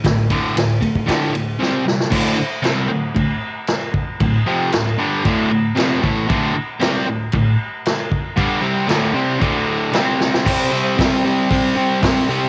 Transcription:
<<
  \new Staff \with { instrumentName = "Overdriven electric guitar" } { \clef bass \time 4/4 \key c \lydian \tempo 4 = 115 <d, a,>8 <d, a, d>8 <d, a,>8 <d, a,>8 <d, a, d>8 <d, a,>8 <c g c'>8 <c g>8 | <d, a, d>8 r8 <c g c'>8 <d, a,>8 <d, a,>8 r4. | <d, a,>8 <f, c f>8 <d, a,>8 <g, d g>8 <d, a, d>8 <d, a,>8 <f, c f>8 <a, e a>8 | <d, a, d>8 r8 <c g c'>8 <d, a,>8 <d, a,>8 r4. |
<g, d g>8 <c g c'>8 <d, a, d>8 <c g c'>8 <d, a, d>4 <c g c'>4 | <c g c'>8 <c g c'>8 <c g c'>8 <c g c'>8 <c g c'>8 <c g c'>8 <c g c'>8 <c g c'>8 | }
  \new DrumStaff \with { instrumentName = "Drums" } \drummode { \time 4/4 <bd cymr sn>8 <bd cymr>8 <cymr sn>8 <bd cymr>16 bd16 <bd cymr sn>8 cymr8 sn8 sn16 sn16 | <cymc bd>4 <cymc sn>4 <cymc bd>4 <cymc sn>8 bd8 | <cymc bd>4 <cymc sn>4 <cymc bd>4 <cymc sn>8 bd8 | <cymc bd>4 <cymc sn>4 <cymc bd>4 <cymc sn>8 bd8 |
<cymc bd>4 <cymc sn>4 <cymc bd>4 <cymc sn>8 sn16 sn16 | <cymc bd>4 <hho bd sn>4 <hho bd>4 <hho bd sn>4 | }
>>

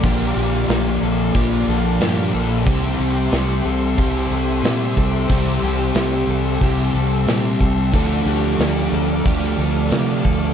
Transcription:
<<
  \new Staff \with { instrumentName = "String machine" } { \time 4/4 \key c \mixolydian \tempo 4 = 91 <bes d'' f'' c'''>1 | <g' c'' e'' c'''>1~ | <g' c'' e'' c'''>1 | <a' d'' f'' d'''>1 | }
  \new Staff \with { instrumentName = "Twelve-string acoustic guitar" } { \time 4/4 \key c \mixolydian g'8 g'4 a'8 g'8 a'8 g'8 a'8 | g'8 g'4 a'8 g'8 a'8 g'8 a'8 | g'8 g'4 a'8 g'8 a'8 g'8 a'8 | a'8 g'4 a'8 g'8 a'8 g'8 a'8 | }
  \new Staff \with { instrumentName = "Distorted electric guitar" } { \clef bass \time 4/4 \key c \mixolydian <bes, f bes>1 | <c g c'>1 | <c g c'>1 | <d a d'>1 | }
  \new Staff \with { instrumentName = "Overdriven electric guitar" } { \clef bass \time 4/4 \key c \mixolydian <bes, d f bes f'>2 <bes, d f bes f'>2 | <c g c' e'>2 <c g c' e'>2 | <c g c' e'>2 <c g c' e'>2 | <d f a d'>2 <d f a d'>2 | }
  \new Staff \with { instrumentName = "Fingered electric bass" } { \clef bass \time 4/4 \key c \mixolydian bes,,8 bes,,8 bes,,8 bes,,8 bes,,8 bes,,8 g,8 bes,,8 | c,8 c,8 c,8 c,8 c,8 c,8 bes,8 c,8 | c,8 c,8 c,8 c,8 c,8 c,8 bes,8 c,8 | d,8 d,8 d,8 d,8 d,8 d,8 c8 d,8 | }
  \new DrumStaff \with { instrumentName = "Drums" } \drummode { \time 4/4 <hho bd>4 <hho sn>4 <hho bd>4 <hho sn>4 | <hho bd>4 <hho sn>4 <hho bd>4 <hho sn>8 bd8 | <hho bd>4 <hho sn>4 <hho bd>4 <hho sn>8 bd8 | <hho bd>4 <hho sn>4 <hho bd>4 <hho sn>8 bd8 | }
>>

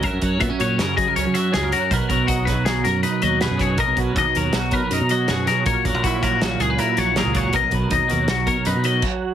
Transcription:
<<
  \new Staff \with { instrumentName = "Clean electric guitar" } { \time 5/4 \key b \major \tempo 4 = 160 e''8 cis''8 e''8 cis''8 ais'8 dis''8 cis''8 e''8 gis'8 ais'8 | b'8 ais'8 fis'8 b'8 gis'8 ais'8 b'8 dis''8 b'8 cis''8 | dis''8 b'8 dis''8 ais'8 fis'8 b'8 ais'8 dis''8 fis'8 ais'8 | cis''8 ais'8 fis'8 ais'8 fis'8 gis'8 ais'8 cis''8 ais'8 cis''8 |
dis''8 b'8 dis''8 ais'8 fis'8 cis''8 b'8 dis''8 r4 | }
  \new Staff \with { instrumentName = "Clean electric guitar" } { \clef bass \time 5/4 \key b \major << { ais'4 b16 cis'4~ cis'16 gis'16 ais'16 cis'4 gis'16 ais'8. | ais'4 dis'4. ais'8 dis'4 gis'4 | ais'4 dis'4. ais'8 dis'4 gis'4 | ais'4 e'4. gis'16 b'16 e'4 gis'4 |
ais'4 dis'4. ais'8 dis'4 r4 | } \\ { <fis, fis>8 fis4 fis8 cis4. fis8 fis,8 fis8 | b,8 fis4 fis8 fis4. fis8 b,8 fis8 | b,8 fis4 fis8 fis4. fis8 b,8 fis8 | ais,8 fis4 fis8 ais,4. fis8 ais,8 fis8 |
b,8 fis4 fis8 fis4. fis4. | } >> }
  \new Staff \with { instrumentName = "Fingered electric bass" } { \clef bass \time 5/4 \key b \major fis,16 fis,16 fis,8 ais,16 r16 ais,8 fis,8 fis16 r16 cis,16 fis8. cis,8 r8 | b,,16 r16 ais,,16 b,,4~ b,,16 b,,8 fis,8 r8 dis,8. fis,8. | b,,16 b,,16 b,,8 dis,16 r16 dis,8 b,,8 b,16 r16 fis,16 b,8. fis,8 r8 | ais,,16 r16 e,,16 ais,,4~ ais,,16 ais,,8 cis,8 r8 ais,,8. cis,8. |
b,,16 b,,16 b,,8 dis,16 r16 dis,8 b,,8 b,16 r16 fis,16 b,8. r4 | }
  \new DrumStaff \with { instrumentName = "Drums" } \drummode { \time 5/4 <hh bd>8 <hh bd>8 <hh bd>8 hh8 <hh sn>8 <hh bd>8 hh8 hh8 <hh sn>8 hh8 | <hh bd>8 <hh bd>8 <hh bd>8 <hh bd sn>8 <hh sn>8 <hh sn>8 hh8 hh8 <hh sn>8 <hh bd sn>8 | <hh bd>8 <hh bd>8 <hh bd>8 hh8 <hh sn>8 <hh bd>8 hh8 hh8 <hh sn>8 <hh sn>8 | <hh bd>8 <hh bd>8 <hh bd>8 <hh bd>8 <hh sn>8 hh8 hh8 hh8 <hh sn>8 <hh bd>8 |
<hh bd>8 <hh bd>8 <hh bd>8 hh8 <hh sn>8 <hh bd>8 hh8 hh8 <cymc bd>4 | }
>>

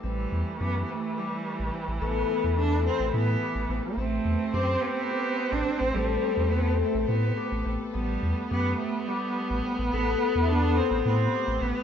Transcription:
<<
  \new Staff \with { instrumentName = "String section" } { \time 7/8 \key a \minor \tempo 4 = 107 <a g' a' b'>2.~ <a g' a' b'>8~ | <a g' a' b'>2.~ <a g' a' b'>8~ | <a g' a' b'>2.~ <a g' a' b'>8~ | <a g' a' b'>2.~ <a g' a' b'>8~ |
<a g' a' b'>2.~ <a g' a' b'>8~ | <a g' a' b'>2.~ <a g' a' b'>8 | }
  \new Staff \with { instrumentName = "Harp" } { \time 7/8 \key a \minor c'4 g'8 c'8 g'4 c'8 | a'8 b8 a'4 b8 g'8 c'8 | c'4 g'8 c'8 g'4 c'8 | a'8 b8 a'4 b8 g'8 c'8 |
b4 g'8 c'8 g'4 c'8 | a'8 b8 a'4 b8 g'8 c'8 | }
  \new Staff \with { instrumentName = "Cello" } { \time 7/8 \key a \minor g4 b16. b32 a8 g4~ g32 r16. | b4 d'8 c'8 b4~ b32 r16. | a4 c'8 b16 b4 d'8 c'16 | g4 b8 a8 b4~ b32 r16. |
g4 b8 a8 g4~ g32 r16. | b8.~ b32 e'32 d'8 c'8 c'4 b8 | }
  \new Staff \with { instrumentName = "Viola" } { \time 7/8 \key a \minor e2.~ e8~ | e2.~ e8 | c'2.~ c'8~ | c'2. r8 |
b2.~ b8~ | b2.~ b8 | }
  \new Staff \with { instrumentName = "Sub bass" } { \clef bass \time 7/8 \key a \minor a,,8 e,16 r16 fis,8 r4 r16 a,,16 r16 a,,16 | a,,8 r16 e,4 a,,16 a,8 r16 a,,16 a,,16 r16 | a,,8 e,16 r16 fis,8 r4 r16 a,,16 r16 a,,16 | a,,8 r16 e,4 a,,16 a,8 r16 a,,16 a,,16 r16 |
a,,8 e,16 r16 fis,8 r4 r16 a,,16 r16 a,,16 | a,,8 r16 e,4 a,,16 a,8 r16 a,,16 a,,16 r16 | }
>>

